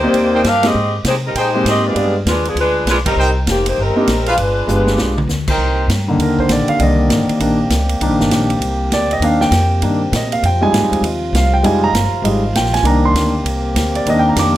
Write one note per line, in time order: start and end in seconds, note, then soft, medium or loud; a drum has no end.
0.00 0.13 D2 medium
0.00 0.46 A#3 loud
0.00 0.42 A#3 medium
0.00 0.42 C4 medium
0.00 0.46 D#4 loud
0.00 0.43 D#4 medium
0.00 0.45 G4 medium
0.00 0.43 G4 medium
0.00 0.46 C5 loud
0.00 0.43 D5 medium
0.14 0.43 D#2 medium
0.14 ride medium
0.33 0.41 D#4 medium
0.33 0.41 A#4 medium
0.33 0.41 C5 medium
0.33 0.41 G5 medium
0.44 0.74 G2 medium
0.44 0.65 D4 medium
0.44 0.65 G4 medium
0.44 0.65 A#4 medium
0.44 0.65 F5 loud
0.44 snare medium
0.44 hi-hat pedal soft
0.44 ride medium
0.63 0.73 G#3 medium
0.63 0.74 A#3 medium
0.63 0.74 C4 medium
0.63 0.95 C4 medium
0.63 0.74 D#4 soft
0.63 0.74 G4 medium
0.63 0.95 G4 medium
0.63 0.95 G#4 medium
0.63 0.95 D#5 loud
0.63 snare medium
0.63 ride medium
0.75 1.04 G#2 medium
1.04 1.34 C3 medium
1.04 1.15 G#3 medium
1.04 1.15 D#4 medium
1.04 1.15 G4 medium
1.04 1.15 C5 medium
1.04 snare medium
1.04 hi-hat pedal medium
1.04 ride medium
1.26 1.36 G3 medium
1.26 1.36 C4 medium
1.26 1.35 D#4 medium
1.26 1.36 A#4 medium
1.35 1.65 A#2 medium
1.35 1.67 G#3 medium
1.35 1.49 D#4 medium
1.35 1.67 D#4 medium
1.35 1.67 G4 medium
1.35 1.49 G#4 medium
1.35 1.48 C5 medium
1.35 1.67 C5 loud
1.35 1.49 G5 medium
1.35 ride medium
1.54 1.93 G#3 medium
1.54 1.94 A#3 soft
1.54 1.94 C4 medium
1.54 1.94 D#4 medium
1.54 1.94 G4 medium
1.65 1.95 G#2 medium
1.65 1.85 G4 medium
1.65 1.85 G#4 medium
1.65 1.85 D#5 loud
1.65 snare medium
1.65 hi-hat pedal soft
1.65 ride medium
1.69 1.85 C4 medium
1.86 2.16 B3 medium
1.86 2.16 F4 medium
1.86 2.16 G#4 medium
1.86 2.16 D5 loud
1.95 2.25 G2 medium
1.95 2.12 G#3 medium
1.95 2.13 B3 soft
1.95 2.13 D4 soft
1.95 2.13 F4 soft
1.95 2.13 G4 medium
1.95 ride medium
2.25 2.55 D#2 medium
2.25 2.45 G#3 medium
2.25 2.45 D4 medium
2.25 2.45 F4 medium
2.25 2.45 B4 medium
2.25 snare medium
2.25 hi-hat pedal medium
2.25 ride medium
2.45 2.58 F3 medium
2.45 2.58 B3 medium
2.45 2.57 D4 medium
2.45 2.58 G#4 medium
2.45 ride soft
2.55 2.85 D2 medium
2.55 2.86 G#3 medium
2.55 2.86 D4 medium
2.55 2.85 F4 medium
2.55 ride medium
2.59 2.86 B4 loud
2.85 3.15 B1 medium
2.85 snare medium
2.85 hi-hat pedal medium
2.85 ride medium
2.90 2.98 G#3 medium
2.90 2.98 D4 medium
2.90 2.98 F4 medium
2.90 2.98 B4 loud
3.05 3.34 G3 medium
3.05 3.34 C4 medium
3.05 3.34 D#4 medium
3.05 3.34 A#4 medium
3.05 kick medium
3.05 ride medium
3.16 3.46 C2 medium
3.16 3.30 D#4 medium
3.16 3.30 A#4 medium
3.16 3.30 C5 medium
3.16 3.30 G5 medium
3.47 3.76 F1 medium
3.47 3.66 D#3 medium
3.47 3.66 A#3 medium
3.47 3.66 C4 medium
3.47 3.66 G4 medium
3.47 snare medium
3.47 hi-hat pedal medium
3.47 ride medium
3.66 3.78 A#3 medium
3.66 3.78 D#4 medium
3.66 3.78 G4 medium
3.66 3.78 C5 medium
3.66 ride medium
3.77 3.95 G1 medium
3.77 4.28 G3 medium
3.77 4.28 C4 medium
3.77 4.28 D#4 medium
3.77 4.28 A#4 medium
3.96 4.06 A#3 medium
3.96 4.06 C4 medium
3.96 4.06 D4 medium
3.96 4.07 D#4 medium
3.96 4.07 G4 medium
4.07 4.37 A#1 medium
4.07 snare medium
4.07 hi-hat pedal soft
4.07 ride medium
4.26 5.30 G#3 medium
4.26 5.29 D4 medium
4.26 4.34 F4 medium
4.26 5.30 F4 medium
4.26 4.34 G#4 medium
4.26 4.34 B4 medium
4.26 5.30 B4 medium
4.26 4.34 F5 medium
4.26 ride soft
4.37 4.67 G1 medium
4.37 ride medium
4.67 4.97 G1 medium
4.67 5.13 G#3 medium
4.67 5.13 B3 soft
4.67 5.14 D4 soft
4.67 5.14 F4 soft
4.67 5.14 G4 medium
4.67 hi-hat pedal medium
4.87 snare medium
4.98 5.27 B1 medium
4.98 snare medium
5.18 mid tom medium
5.28 5.57 D2 medium
5.28 snare medium
5.28 hi-hat pedal medium
5.47 5.87 D#4 medium
5.47 5.87 A#4 medium
5.47 5.87 C5 medium
5.47 5.87 G5 medium
5.47 kick medium
5.47 crash medium
5.57 5.87 C2 medium
5.57 12.82 C3 medium
5.57 10.39 A#3 medium
5.57 12.82 C4 medium
5.57 10.39 G4 medium
5.88 6.17 G2 medium
5.88 snare medium
5.88 hi-hat pedal medium
5.88 ride medium
6.08 7.26 D3 medium
6.08 6.78 D#3 medium
6.08 6.79 A#3 soft
6.18 6.48 D#2 medium
6.18 ride medium
6.22 6.39 A#4 medium
6.39 6.50 C5 medium
6.39 kick soft
6.48 6.67 A#1 medium
6.48 6.69 D5 medium
6.48 snare medium
6.48 hi-hat pedal soft
6.48 ride medium
6.68 6.80 F5 medium
6.68 muted upright bass stroke soft
6.68 ride soft
6.79 7.08 C2 medium
6.79 7.39 D#3 soft
6.79 7.39 A#3 soft
6.79 7.97 D5 medium
6.79 7.68 D#5 medium
6.79 ride medium
7.09 7.27 G#1 medium
7.09 snare medium
7.09 hi-hat pedal medium
7.09 ride medium
7.28 muted upright bass stroke soft
7.28 ride soft
7.40 7.69 A#1 medium
7.40 7.57 D#3 soft
7.40 7.57 A#3 soft
7.40 7.58 D4 medium
7.40 ride medium
7.70 8.00 C#2 medium
7.70 snare medium
7.70 hi-hat pedal medium
7.70 ride medium
7.89 ride medium
8.01 8.10 C2 medium
8.01 8.48 D#3 medium
8.01 8.48 A#3 soft
8.01 8.49 D4 medium
8.01 ride medium
8.10 8.19 A#1 medium
8.20 8.29 G1 medium
8.20 snare medium
8.29 8.58 A#1 medium
8.29 snare medium
8.29 hi-hat pedal medium
8.29 ride medium
8.50 ride soft
8.59 8.89 C2 medium
8.59 ride medium
8.90 9.19 D2 medium
8.90 9.11 D5 medium
8.90 snare medium
8.90 hi-hat pedal soft
8.90 ride medium
9.11 9.23 D#5 medium
9.11 ride soft
9.20 9.50 D#2 medium
9.20 9.44 D#3 medium
9.20 9.45 A#3 soft
9.20 9.45 D4 medium
9.20 ride medium
9.24 9.42 F5 medium
9.41 9.80 G5 medium
9.41 snare medium
9.51 9.81 F2 medium
9.51 snare medium
9.51 hi-hat pedal medium
9.51 ride medium
9.82 10.12 G2 medium
9.82 10.00 D#3 soft
9.82 10.00 A#3 soft
9.82 10.00 D4 soft
9.82 ride medium
10.12 10.42 A#2 medium
10.12 10.33 D#5 medium
10.12 snare medium
10.12 hi-hat pedal soft
10.12 ride medium
10.32 10.43 F5 medium
10.32 ride soft
10.43 10.72 F2 medium
10.43 12.83 F3 medium
10.43 12.84 F4 medium
10.43 10.63 G5 medium
10.43 ride medium
10.61 11.01 G3 soft
10.61 11.01 G#3 soft
10.61 11.02 D#4 medium
10.61 11.01 G#5 medium
10.72 10.82 G#2 medium
10.72 snare medium
10.72 hi-hat pedal medium
10.72 ride medium
10.82 10.91 F2 medium
10.92 11.01 D#2 medium
10.92 ride medium
11.01 11.32 D#2 medium
11.01 ride medium
11.33 11.62 C2 medium
11.33 11.53 F5 medium
11.33 snare medium
11.33 hi-hat pedal medium
11.33 ride medium
11.54 11.64 G5 medium
11.63 11.92 F1 medium
11.63 11.86 G3 medium
11.63 11.86 G#3 soft
11.63 11.87 D#4 medium
11.63 11.83 G#5 medium
11.63 ride medium
11.84 12.22 A#5 loud
11.93 12.11 G1 medium
11.93 snare medium
11.93 hi-hat pedal medium
11.93 ride medium
12.22 12.53 G#1 medium
12.22 12.41 G3 soft
12.22 12.41 G#3 soft
12.22 12.42 D#4 soft
12.22 ride medium
12.53 12.82 A#1 medium
12.53 12.74 G5 medium
12.53 snare medium
12.53 hi-hat pedal soft
12.53 ride medium
12.65 snare soft
12.74 12.85 G#5 medium
12.74 snare soft
12.74 ride medium
12.83 13.13 C2 medium
12.83 14.57 C3 medium
12.83 13.31 D#3 soft
12.83 13.32 A#3 soft
12.83 14.57 A#3 medium
12.83 14.57 C4 medium
12.83 13.32 D4 medium
12.83 14.57 G4 medium
12.83 13.04 A#5 medium
12.83 ride medium
13.05 13.43 C6 medium
13.13 13.44 D2 medium
13.13 snare medium
13.13 hi-hat pedal medium
13.13 ride medium
13.44 13.74 C2 medium
13.44 ride medium
13.75 14.05 D2 medium
13.75 snare medium
13.75 hi-hat pedal medium
13.75 ride medium
13.95 14.06 D5 medium
13.95 ride medium
14.06 14.35 D#2 medium
14.06 14.55 D#3 medium
14.06 14.56 A#3 soft
14.06 14.56 D4 medium
14.06 14.18 D#5 medium
14.06 ride medium
14.19 14.28 G5 medium
14.29 14.37 A#5 medium
14.36 14.57 F2 medium
14.36 14.56 D6 medium
14.36 snare medium
14.36 hi-hat pedal medium
14.36 ride medium